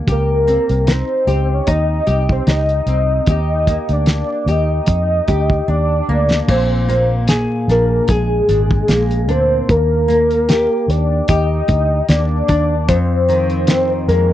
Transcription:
0.00 0.16 A#3 medium
0.00 0.16 D4 medium
0.07 0.57 C#2 medium
0.07 1.27 G4 medium
0.07 kick loud
0.07 closed hi-hat medium
0.11 0.93 A#4 loud
0.47 2.87 C4 medium
0.47 closed hi-hat medium
0.69 1.02 C2 medium
0.69 closed hi-hat soft
0.87 1.67 D#4 medium
0.87 1.55 C5 medium
0.87 snare loud
0.87 closed hi-hat medium
1.27 1.59 C#2 medium
1.27 2.06 G4 medium
1.27 closed hi-hat medium
1.54 1.72 C#5 loud
1.67 2.00 D#2 medium
1.67 2.47 D#4 medium
1.67 2.31 D#5 loud
1.67 kick medium
1.67 closed hi-hat medium
2.07 2.40 C2 medium
2.07 3.29 G4 medium
2.07 closed hi-hat medium
2.29 2.52 C5 loud
2.29 kick medium
2.47 2.79 C#2 medium
2.47 5.68 D#4 medium
2.47 3.29 D#5 loud
2.47 snare loud
2.47 closed hi-hat medium
2.69 closed hi-hat soft
2.86 3.19 C2 medium
2.86 3.37 C4 medium
2.86 closed hi-hat medium
3.26 3.77 D#2 medium
3.26 4.47 G4 medium
3.26 kick loud
3.26 closed hi-hat medium
3.30 3.94 D#5 loud
3.67 6.09 A#3 medium
3.67 kick medium
3.67 closed hi-hat medium
3.89 4.22 D2 medium
3.89 4.52 D5 loud
3.89 closed hi-hat soft
4.06 snare loud
4.06 closed hi-hat medium
4.46 4.79 D#2 medium
4.46 5.28 G4 medium
4.46 closed hi-hat medium
4.50 5.69 D#5 loud
4.86 5.20 F2 medium
4.86 kick medium
4.86 closed hi-hat medium
5.28 5.60 D2 medium
5.28 6.57 G4 medium
5.28 kick medium
5.28 closed hi-hat medium
5.50 kick medium
5.68 6.00 D#2 medium
5.68 7.32 D4 medium
5.68 6.52 D5 loud
6.09 6.41 D2 medium
6.09 6.88 A#3 medium
6.31 snare medium
6.48 7.46 A#1 loud
6.48 9.69 A#2 medium
6.48 7.29 C5 loud
6.48 kick loud
6.48 crash medium
6.89 8.88 A#3 medium
6.89 closed hi-hat medium
7.28 8.09 G#4 medium
7.28 snare loud
7.28 closed hi-hat medium
7.68 8.00 A#1 medium
7.68 8.49 D4 soft
7.68 8.12 A#4 medium
7.68 snare soft
7.68 closed hi-hat medium
8.08 8.41 A#1 medium
8.08 9.78 G#4 medium
8.08 9.32 G#4 loud
8.08 kick medium
8.08 closed hi-hat medium
8.49 8.81 G#1 medium
8.49 9.28 D4 medium
8.49 closed hi-hat medium
8.71 kick medium
8.88 9.28 A#1 medium
8.88 10.08 A#3 medium
8.88 snare loud
8.88 closed hi-hat medium
9.11 closed hi-hat soft
9.28 9.61 D2 medium
9.28 12.48 D4 medium
9.28 9.71 C5 loud
9.28 closed hi-hat medium
9.69 10.67 D#2 loud
9.69 10.91 A#4 loud
9.69 kick loud
9.69 closed hi-hat medium
10.08 12.07 A#3 medium
10.08 closed hi-hat medium
10.31 closed hi-hat soft
10.49 11.28 G4 medium
10.49 snare loud
10.49 closed hi-hat medium
10.88 11.20 D#2 medium
10.88 11.28 D5 medium
10.88 closed hi-hat medium
11.28 11.61 D#2 medium
11.28 12.98 G4 medium
11.28 12.10 D#5 loud
11.28 kick medium
11.28 closed hi-hat medium
11.68 12.01 D2 medium
11.68 kick medium
11.68 closed hi-hat medium
12.09 12.41 D#2 loud
12.09 12.97 A#3 medium
12.09 12.90 D5 loud
12.09 snare loud
12.09 closed hi-hat medium
12.48 12.88 D#2 medium
12.48 12.97 D4 medium
12.48 kick medium
12.48 closed hi-hat medium
12.88 13.86 F2 loud
12.88 14.33 F2 medium
12.88 14.07 C5 loud
12.88 kick loud
12.88 closed hi-hat medium
13.29 14.33 D#3 medium
13.29 closed hi-hat medium
13.50 closed hi-hat soft
13.67 14.33 C4 medium
13.67 snare loud
13.67 closed hi-hat medium
14.08 14.33 F2 loud
14.08 14.33 G#3 medium
14.08 14.33 A#4 medium
14.08 closed hi-hat medium

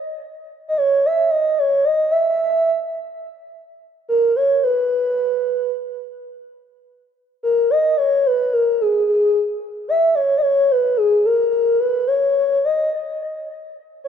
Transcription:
0.68 0.79 D#5 medium
0.77 1.07 C#5 loud
1.06 1.30 E5 loud
1.30 1.60 D#5 medium
1.59 1.86 C#5 medium
1.85 2.10 D#5 medium
2.11 2.18 E5 medium
2.19 2.27 E5 medium
2.29 2.31 E5 medium
2.29 2.40 E5 medium
2.42 2.49 E5 medium
2.49 2.55 E5 medium
2.55 2.63 E5 medium
2.64 2.71 E5 medium
4.09 4.33 A#4 loud
4.36 4.60 C#5 loud
4.63 5.71 B4 medium
7.43 7.69 A#4 medium
7.70 7.96 D#5 medium
7.97 8.28 C#5 medium
8.26 8.54 B4 medium
8.53 8.80 A#4 medium
8.81 8.87 G#4 medium
8.89 8.95 G#4 medium
8.97 9.03 G#4 medium
9.07 9.12 G#4 medium
9.13 9.18 G#4 medium
9.19 9.24 G#4 medium
9.24 9.31 G#4 medium
9.32 9.39 G#4 medium
9.88 10.14 E5 loud
10.15 10.34 C#5 medium
10.37 10.43 D#5 medium
10.41 10.73 C#5 loud
10.71 10.98 B4 medium
10.97 11.24 G#4 medium
11.25 11.50 A#4 medium
11.51 11.77 A#4 medium
11.79 12.05 B4 medium
12.07 12.14 C#5 medium
12.14 12.21 C#5 medium
12.21 12.28 C#5 medium
12.29 12.36 C#5 medium
12.38 12.45 C#5 medium
12.46 12.51 C#5 medium
12.52 12.59 C#5 medium
12.64 12.90 D#5 medium
14.04 14.08 C#5 medium

